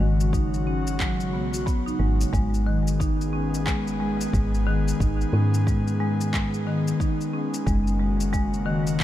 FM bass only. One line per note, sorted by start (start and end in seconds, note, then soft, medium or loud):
0.00 1.35 G#1 medium
1.33 1.93 B1 medium
2.00 2.25 G#1 medium
2.33 4.26 G#1 loud
4.33 4.93 G#1 loud
5.00 5.25 G#1 medium
5.33 6.93 G#2 medium
7.67 9.04 F#1 medium